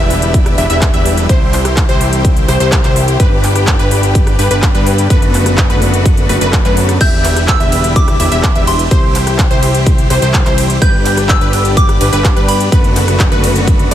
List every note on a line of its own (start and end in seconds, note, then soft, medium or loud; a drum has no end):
0.00 0.56 E1 loud
0.00 1.25 D3 medium
0.00 3.16 G3 medium
0.00 1.25 B3 medium
0.00 0.55 D4 medium
0.00 0.55 E4 medium
0.00 1.27 E4 medium
0.00 0.55 G4 medium
0.00 0.55 B4 medium
0.00 0.55 E5 medium
0.00 0.55 E5 loud
0.10 open hi-hat loud
0.22 closed hi-hat medium
0.34 kick loud
0.34 closed hi-hat medium
0.46 cross-stick medium
0.46 closed hi-hat soft
0.58 0.67 E1 loud
0.58 0.67 D4 medium
0.58 0.67 E4 medium
0.58 0.67 G4 medium
0.58 0.67 B4 medium
0.58 0.67 E5 medium
0.58 open hi-hat loud
0.70 0.91 E1 loud
0.70 0.91 D4 medium
0.70 0.91 E4 medium
0.70 0.91 G4 medium
0.70 0.91 B4 medium
0.70 0.91 E5 loud
0.70 closed hi-hat medium
0.82 kick loud
0.82 clap loud
0.82 closed hi-hat medium
0.94 1.27 E1 loud
0.94 1.27 D4 medium
0.94 1.27 E4 medium
0.94 1.26 G4 medium
0.94 1.27 B4 medium
0.94 1.27 E5 loud
0.94 1.27 E5 medium
0.94 closed hi-hat soft
1.06 open hi-hat loud
1.17 closed hi-hat soft
1.29 1.87 C2 loud
1.29 3.18 E3 medium
1.29 3.18 C4 medium
1.29 1.86 E4 loud
1.29 1.86 G4 medium
1.29 5.07 G4 medium
1.29 1.86 C5 loud
1.29 kick loud
1.29 closed hi-hat medium
1.53 clap soft
1.53 open hi-hat loud
1.65 cross-stick medium
1.65 closed hi-hat medium
1.77 kick loud
1.77 clap loud
1.77 closed hi-hat medium
1.89 2.46 C2 loud
1.89 2.46 E4 medium
1.89 2.46 G4 medium
1.89 2.46 C5 loud
1.89 closed hi-hat soft
2.01 open hi-hat loud
2.13 closed hi-hat medium
2.25 kick loud
2.25 closed hi-hat medium
2.37 closed hi-hat soft
2.48 2.58 C2 loud
2.48 2.57 E4 medium
2.48 2.57 G4 medium
2.48 2.57 C5 medium
2.48 cross-stick medium
2.48 open hi-hat loud
2.60 2.82 C2 loud
2.60 2.81 E4 loud
2.60 2.81 G4 medium
2.60 2.81 C5 loud
2.60 closed hi-hat medium
2.72 kick loud
2.72 clap loud
2.72 closed hi-hat medium
2.84 3.17 C2 loud
2.84 3.17 E4 medium
2.84 3.17 G4 medium
2.84 3.17 C5 loud
2.84 3.17 C5 medium
2.84 clap soft
2.84 closed hi-hat soft
2.96 open hi-hat loud
3.08 closed hi-hat medium
3.20 3.77 G1 medium
3.20 6.97 D3 medium
3.20 5.08 G3 medium
3.20 8.87 B3 medium
3.20 3.76 D4 loud
3.20 3.76 G4 medium
3.20 3.76 B4 loud
3.20 3.77 B4 loud
3.20 kick loud
3.20 closed hi-hat medium
3.43 clap soft
3.43 open hi-hat loud
3.56 cross-stick medium
3.56 closed hi-hat medium
3.67 kick loud
3.67 clap loud
3.67 closed hi-hat medium
3.79 4.37 G1 loud
3.79 4.36 D4 medium
3.79 4.36 G4 medium
3.79 4.36 B4 loud
3.79 closed hi-hat soft
3.91 open hi-hat loud
4.03 closed hi-hat medium
4.15 kick loud
4.15 closed hi-hat medium
4.27 cross-stick medium
4.27 closed hi-hat soft
4.39 4.48 G1 loud
4.39 4.48 D4 medium
4.39 4.48 G4 medium
4.39 4.48 B4 medium
4.39 open hi-hat loud
4.51 4.72 G1 loud
4.51 4.72 D4 loud
4.51 4.72 G4 medium
4.51 4.72 B4 loud
4.51 closed hi-hat medium
4.62 kick loud
4.62 clap loud
4.62 closed hi-hat medium
4.75 5.08 G2 loud
4.75 5.07 D4 medium
4.75 5.07 G4 medium
4.75 5.07 B4 loud
4.75 5.07 B4 medium
4.75 closed hi-hat soft
4.86 open hi-hat loud
4.98 closed hi-hat medium
5.10 5.67 F#1 medium
5.10 6.99 A3 medium
5.10 5.67 A3 loud
5.10 5.67 B3 medium
5.10 5.67 D4 loud
5.10 6.99 F#4 medium
5.10 5.67 F#4 medium
5.10 5.67 B4 loud
5.10 kick loud
5.10 closed hi-hat medium
5.22 closed hi-hat soft
5.34 clap soft
5.34 open hi-hat loud
5.46 cross-stick medium
5.46 closed hi-hat medium
5.58 kick loud
5.58 clap loud
5.58 closed hi-hat medium
5.70 6.27 F#1 loud
5.70 6.26 A3 medium
5.70 6.26 B3 medium
5.70 6.26 D4 medium
5.70 6.26 F#4 medium
5.70 6.26 B4 loud
5.70 closed hi-hat soft
5.82 open hi-hat medium
5.94 closed hi-hat medium
6.06 kick loud
6.06 closed hi-hat medium
6.17 closed hi-hat soft
6.29 6.39 F#1 loud
6.29 6.38 A3 medium
6.29 6.38 B3 medium
6.29 6.38 D4 medium
6.29 6.38 F#4 medium
6.29 6.38 B4 medium
6.29 cross-stick medium
6.29 open hi-hat loud
6.41 6.63 F#1 loud
6.41 6.62 A3 loud
6.41 6.62 B3 medium
6.41 6.62 D4 medium
6.41 6.62 F#4 medium
6.41 6.62 B4 loud
6.41 closed hi-hat medium
6.53 kick loud
6.53 clap loud
6.53 closed hi-hat medium
6.65 6.98 F#2 loud
6.65 6.98 A3 medium
6.65 6.98 B3 medium
6.65 6.98 D4 medium
6.65 6.98 F#4 medium
6.65 6.98 B4 loud
6.65 clap soft
6.65 closed hi-hat soft
6.77 open hi-hat loud
6.89 cross-stick medium
6.89 closed hi-hat medium
7.01 7.58 E1 medium
7.01 8.89 D3 medium
7.01 12.68 G3 medium
7.01 7.57 D4 loud
7.01 7.57 E4 medium
7.01 8.89 E4 medium
7.01 7.57 G4 loud
7.01 7.57 B4 medium
7.01 7.57 E5 loud
7.01 7.50 G6 loud
7.01 kick loud
7.01 closed hi-hat medium
7.01 crash medium
7.24 clap soft
7.24 open hi-hat loud
7.24 ride medium
7.36 cross-stick medium
7.36 closed hi-hat medium
7.48 7.98 E6 loud
7.48 kick loud
7.48 clap loud
7.48 closed hi-hat medium
7.60 8.17 E1 loud
7.60 8.17 D4 medium
7.60 8.17 E4 medium
7.60 8.17 G4 medium
7.60 8.17 B4 medium
7.60 8.17 E5 loud
7.60 closed hi-hat soft
7.72 open hi-hat loud
7.72 ride medium
7.84 closed hi-hat medium
7.96 8.70 D6 loud
7.96 kick loud
7.96 closed hi-hat medium
8.08 cross-stick medium
8.08 closed hi-hat soft
8.20 8.29 E1 loud
8.20 8.29 D4 medium
8.20 8.29 E4 medium
8.20 8.29 G4 medium
8.20 8.29 B4 medium
8.20 8.29 E5 medium
8.20 open hi-hat loud
8.20 ride medium
8.32 8.53 E1 medium
8.32 8.53 D4 loud
8.32 8.53 E4 medium
8.32 8.53 G4 medium
8.32 8.53 B4 medium
8.32 8.53 E5 loud
8.32 closed hi-hat medium
8.43 kick loud
8.43 clap loud
8.43 closed hi-hat medium
8.55 8.89 E1 loud
8.55 8.88 D4 medium
8.55 8.88 E4 medium
8.55 8.88 G4 medium
8.55 8.88 B4 medium
8.55 8.88 E5 loud
8.55 8.88 E5 medium
8.55 closed hi-hat soft
8.67 10.06 C6 medium
8.67 open hi-hat loud
8.67 ride medium
8.79 closed hi-hat medium
8.91 9.48 C2 loud
8.91 10.80 E3 medium
8.91 10.80 C4 medium
8.91 9.48 E4 loud
8.91 9.48 G4 medium
8.91 10.80 G4 medium
8.91 9.48 C5 loud
8.91 kick loud
8.91 closed hi-hat medium
9.15 clap soft
9.15 open hi-hat loud
9.15 ride medium
9.27 cross-stick medium
9.27 closed hi-hat medium
9.39 kick loud
9.39 clap loud
9.39 closed hi-hat medium
9.51 10.08 C2 loud
9.51 10.07 E4 medium
9.51 10.07 G4 medium
9.51 10.07 C5 loud
9.51 closed hi-hat soft
9.63 open hi-hat loud
9.63 ride medium
9.75 closed hi-hat medium
9.86 kick loud
9.86 closed hi-hat medium
9.98 closed hi-hat soft
10.10 10.20 C2 loud
10.10 10.19 E4 medium
10.10 10.19 G4 medium
10.10 10.19 C5 medium
10.10 cross-stick medium
10.10 open hi-hat loud
10.10 ride medium
10.22 10.44 C2 loud
10.22 10.43 E4 loud
10.22 10.43 G4 medium
10.22 10.43 C5 loud
10.22 closed hi-hat medium
10.34 kick loud
10.34 clap loud
10.34 closed hi-hat medium
10.46 10.79 C2 medium
10.46 10.79 E4 medium
10.46 10.79 G4 medium
10.46 10.79 C5 loud
10.46 clap soft
10.46 closed hi-hat soft
10.58 open hi-hat loud
10.58 ride medium
10.70 closed hi-hat medium
10.82 11.39 G1 medium
10.82 12.70 D3 medium
10.82 13.94 B3 medium
10.82 11.38 D4 loud
10.82 11.38 G4 medium
10.82 12.70 G4 medium
10.82 11.38 B4 loud
10.82 11.26 G6 loud
10.82 kick loud
10.82 closed hi-hat medium
11.05 clap soft
11.05 open hi-hat loud
11.05 ride medium
11.17 cross-stick medium
11.17 closed hi-hat medium
11.29 11.78 E6 loud
11.29 kick loud
11.29 clap loud
11.29 closed hi-hat medium
11.41 11.98 G1 loud
11.41 11.98 D4 medium
11.41 11.98 G4 medium
11.41 11.98 B4 loud
11.41 closed hi-hat soft
11.53 open hi-hat loud
11.53 ride medium
11.65 closed hi-hat medium
11.77 12.51 D6 loud
11.77 kick loud
11.77 closed hi-hat medium
11.89 cross-stick medium
11.89 closed hi-hat soft
12.01 12.10 G1 loud
12.01 12.10 D4 medium
12.01 12.10 G4 medium
12.01 12.10 B4 medium
12.01 open hi-hat loud
12.01 ride medium
12.13 12.34 G1 loud
12.13 12.34 D4 medium
12.13 12.34 G4 medium
12.13 12.34 B4 loud
12.13 closed hi-hat medium
12.24 kick loud
12.24 clap loud
12.24 closed hi-hat medium
12.36 12.70 G2 loud
12.36 12.69 D4 medium
12.36 12.69 G4 medium
12.36 12.69 B4 loud
12.36 12.69 B4 medium
12.36 closed hi-hat soft
12.48 13.87 B5 medium
12.48 open hi-hat loud
12.48 ride medium
12.60 closed hi-hat medium
12.72 13.29 F#1 loud
12.72 13.94 D3 medium
12.72 13.29 A3 loud
12.72 13.94 A3 medium
12.72 13.29 B3 medium
12.72 13.29 D4 medium
12.72 13.29 F#4 medium
12.72 13.94 F#4 medium
12.72 13.29 B4 loud
12.72 kick loud
12.72 closed hi-hat medium
12.84 closed hi-hat soft
12.96 clap soft
12.96 open hi-hat loud
12.96 ride medium
13.08 cross-stick medium
13.08 closed hi-hat soft
13.20 kick loud
13.20 clap loud
13.20 closed hi-hat medium
13.32 13.89 F#1 loud
13.32 13.88 A3 medium
13.32 13.88 B3 medium
13.32 13.88 D4 medium
13.32 13.88 F#4 medium
13.32 13.88 B4 loud
13.32 closed hi-hat soft
13.44 open hi-hat loud
13.44 ride medium
13.56 closed hi-hat soft
13.67 kick loud
13.67 closed hi-hat medium
13.79 closed hi-hat soft